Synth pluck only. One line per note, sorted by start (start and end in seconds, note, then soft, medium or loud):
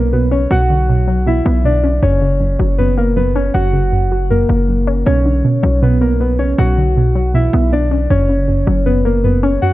0.00 0.12 B2 medium
0.00 0.13 D3 medium
0.00 0.51 F#3 medium
0.00 0.89 B3 medium
0.13 0.50 B2 medium
0.31 1.27 C#4 medium
0.51 0.88 B2 medium
0.70 1.65 D3 medium
0.89 1.25 B2 medium
1.08 2.03 F#3 medium
1.26 1.63 B2 medium
1.46 2.03 B3 medium
1.64 2.02 B2 medium
1.84 2.03 C#4 medium
2.03 2.39 F#2 loud
2.21 3.16 C#3 medium
2.40 2.77 F#2 medium
2.59 3.54 F#3 medium
2.78 3.15 F#2 medium
2.97 3.92 A#3 medium
3.16 3.53 F#2 medium
3.35 4.30 C#4 medium
3.54 3.91 F#2 medium
3.73 4.68 C#3 medium
3.92 4.29 F#2 medium
4.12 5.07 F#3 medium
4.31 4.67 F#2 medium
4.49 5.06 A#3 medium
4.69 5.06 F#2 medium
4.87 5.06 C#4 medium
5.07 5.43 B2 medium
5.25 6.20 D3 medium
5.44 5.81 B2 medium
5.63 6.58 F#3 medium
5.82 6.19 B2 loud
6.01 6.96 B3 medium
6.20 6.57 B2 medium
6.39 7.34 C#4 medium
6.58 6.96 B2 medium
6.78 7.72 D3 medium
6.97 7.33 B2 medium
7.15 8.10 F#3 medium
7.34 7.71 B2 medium
7.53 8.10 B3 medium
7.72 8.10 B2 medium
7.91 8.10 C#4 medium
8.10 8.47 F#2 loud
8.29 9.24 C#3 medium
8.48 8.85 F#2 medium
8.67 9.62 F#3 medium
8.86 9.23 F#2 medium
9.05 9.73 A#3 medium
9.24 9.61 F#2 medium
9.43 9.73 C#4 medium
9.62 9.73 F#2 medium